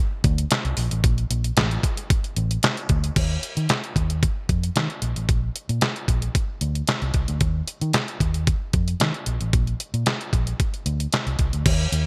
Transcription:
0.24 fingered electric bass D2, kick, closed hi-hat
0.38 closed hi-hat
0.51 snare, clap, closed hi-hat
0.65 fingered electric bass C2, closed hi-hat
0.77 fingered electric bass A#1, open hi-hat
0.91 fingered electric bass A1, closed hi-hat
1.04 fingered electric bass A#1, kick, closed hi-hat
1.18 closed hi-hat
1.30 fingered electric bass A#1, closed hi-hat
1.44 closed hi-hat
1.57 fingered electric bass A1, snare, clap, closed hi-hat
1.71 closed hi-hat
1.83 kick, closed hi-hat
1.97 closed hi-hat
2.10 kick, closed hi-hat
2.24 closed hi-hat
2.36 fingered electric bass A1, closed hi-hat
2.51 closed hi-hat
2.63 snare, clap, closed hi-hat
2.77 closed hi-hat
2.89 fingered electric bass D2, kick, closed hi-hat
3.04 closed hi-hat
3.16 fingered electric bass D#2, kick, closed hi-hat, crash
3.43 closed hi-hat
3.57 fingered electric bass D#3, closed hi-hat
3.69 snare, clap, closed hi-hat
3.84 closed hi-hat
3.96 fingered electric bass D#2, kick, closed hi-hat
4.10 closed hi-hat
4.23 kick, closed hi-hat
4.49 fingered electric bass F2, kick, closed hi-hat
4.63 closed hi-hat
4.76 fingered electric bass D#3, snare, clap, closed hi-hat
4.90 closed hi-hat
5.02 fingered electric bass A#1, closed hi-hat
5.16 fingered electric bass A1, closed hi-hat
5.29 fingered electric bass A#1, kick, closed hi-hat
5.56 closed hi-hat
5.69 fingered electric bass A#2, closed hi-hat
5.81 snare, clap, closed hi-hat
5.96 closed hi-hat
6.08 fingered electric bass A#1, kick, closed hi-hat
6.22 closed hi-hat
6.35 kick, closed hi-hat
6.61 fingered electric bass D2, closed hi-hat
6.75 closed hi-hat
6.87 snare, clap, closed hi-hat
7.02 fingered electric bass C2, closed hi-hat
7.14 fingered electric bass C2, kick, closed hi-hat
7.28 fingered electric bass D2, closed hi-hat
7.41 fingered electric bass D#2, kick, closed hi-hat
7.68 closed hi-hat
7.81 fingered electric bass D#3, closed hi-hat
7.93 snare, clap, closed hi-hat
8.08 closed hi-hat
8.20 fingered electric bass D#2, kick, closed hi-hat
8.34 closed hi-hat
8.47 kick, closed hi-hat
8.73 fingered electric bass F2, kick, closed hi-hat
8.88 closed hi-hat
9.00 fingered electric bass D#3, snare, clap, closed hi-hat
9.14 closed hi-hat
9.26 fingered electric bass A#1, closed hi-hat
9.41 fingered electric bass A1, closed hi-hat
9.53 fingered electric bass A#1, kick, closed hi-hat
9.67 closed hi-hat
9.80 closed hi-hat
9.94 fingered electric bass A#2, closed hi-hat
10.06 snare, clap, closed hi-hat
10.21 closed hi-hat
10.33 fingered electric bass A#1, kick, closed hi-hat
10.47 closed hi-hat
10.60 kick, closed hi-hat
10.74 closed hi-hat
10.86 fingered electric bass D2, closed hi-hat
11.00 closed hi-hat
11.13 snare, clap, closed hi-hat
11.27 fingered electric bass C2, closed hi-hat
11.39 fingered electric bass C2, kick, closed hi-hat
11.53 fingered electric bass D2, closed hi-hat
11.66 fingered electric bass D#2, kick, closed hi-hat, crash
11.92 fingered electric bass D#2, closed hi-hat

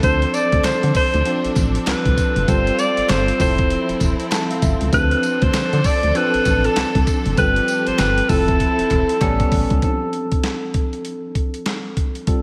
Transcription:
Already playing: string section F3 A4
0.03 fm bass D2, tine electric piano F3 C4 D4 A4, string section C4 D4, alto saxophone C5, kick, closed hi-hat, tambourine
0.22 closed hi-hat
0.34 alto saxophone D5, closed hi-hat, tambourine
0.52 fm bass D2, kick, closed hi-hat
0.64 fm bass D3, alto saxophone C5, snare, clap, closed hi-hat, tambourine
0.83 fm bass D3, closed hi-hat
0.95 alto saxophone C5, kick, open hi-hat, tambourine
1.14 fm bass D2, closed hi-hat
1.25 tine electric piano F3 C4 D4 F4, closed hi-hat
1.45 fm bass A1, closed hi-hat
1.56 fm bass A1, kick, clap, closed hi-hat, tambourine
1.75 closed hi-hat
1.87 fm bass C2, alto saxophone B4, snare, clap, closed hi-hat, tambourine
2.06 fm bass C2, kick, closed hi-hat
2.18 kick, closed hi-hat, tambourine
2.36 fm bass F#1, closed hi-hat
2.48 fm bass G1, tine electric piano G3 C4 F4 A4, string section G3 F4, alto saxophone C5, kick, closed hi-hat, tambourine
2.67 closed hi-hat
2.79 alto saxophone D5, closed hi-hat, tambourine
2.97 fm bass G1, closed hi-hat
3.09 fm bass G1, alto saxophone C5, snare, clap, closed hi-hat, tambourine
3.28 closed hi-hat
3.39 fm bass F1, tine electric piano F3 C4 E4 A4, string section F3 E4, alto saxophone C5, kick, open hi-hat, tambourine
3.58 kick, closed hi-hat
3.70 closed hi-hat
3.89 fm bass E1, closed hi-hat
4.01 fm bass E1, kick, clap, closed hi-hat, tambourine
4.20 closed hi-hat
4.31 tine electric piano A5, snare, clap, closed hi-hat, tambourine
4.33 clap
4.51 tine electric piano F5, closed hi-hat
4.62 fm bass G1, tine electric piano E5, kick, closed hi-hat, tambourine
4.81 fm bass C#2, closed hi-hat
4.92 fm bass D2, tine electric piano F3 C4 D4 G#4, string section D4 A4, alto saxophone B4, kick, closed hi-hat, tambourine
5.00 tine electric piano A4
5.11 closed hi-hat
5.23 closed hi-hat, tambourine
5.42 fm bass D2, alto saxophone C5, kick, closed hi-hat
5.54 fm bass D3, snare, clap, closed hi-hat, tambourine
5.73 fm bass D3, closed hi-hat
5.84 alto saxophone D5, kick, open hi-hat, tambourine
6.03 fm bass D2, closed hi-hat
6.15 tine electric piano F3 C4 D4 A4, alto saxophone B4, closed hi-hat
6.34 fm bass A1, closed hi-hat
6.45 fm bass A1, kick, clap, closed hi-hat, tambourine
6.64 alto saxophone A4, closed hi-hat
6.76 fm bass C2, snare, clap, closed hi-hat, tambourine
6.95 fm bass C2, kick, closed hi-hat
7.07 kick, closed hi-hat, tambourine
7.26 fm bass F#1, closed hi-hat
7.37 fm bass G1, tine electric piano G3 C4 F4 A4, string section G4, alto saxophone B4, kick, closed hi-hat, tambourine
7.56 closed hi-hat
7.68 closed hi-hat, tambourine
7.87 fm bass G1, alto saxophone C5, closed hi-hat
7.98 fm bass G1, alto saxophone B4, snare, clap, closed hi-hat, tambourine
8.18 closed hi-hat
8.29 fm bass F1, tine electric piano F3 C4 E4 A4, string section C4 E4, alto saxophone A4, kick, open hi-hat, tambourine
8.48 kick, closed hi-hat
8.60 kick, closed hi-hat
8.79 fm bass E1, closed hi-hat
8.90 fm bass E1, kick, clap, closed hi-hat
9.09 closed hi-hat
9.21 fm bass A1, tine electric piano G3 B3 C#4 A4, string section G3 B3 C#4, kick, clap, closed hi-hat
9.40 kick, closed hi-hat
9.52 fm bass A1, kick, open hi-hat
9.70 fm bass C#2, kick, closed hi-hat
9.82 tine electric piano F3 C4 D4 A4, kick, closed hi-hat
10.13 closed hi-hat
10.32 kick, closed hi-hat
10.44 snare, clap, closed hi-hat
10.74 kick, closed hi-hat
10.93 closed hi-hat
11.05 closed hi-hat
11.35 kick, closed hi-hat
11.54 closed hi-hat
11.66 snare, clap, closed hi-hat
11.97 kick, closed hi-hat
12.15 closed hi-hat
12.27 tine electric piano G3 C4 F4 A4, kick, closed hi-hat

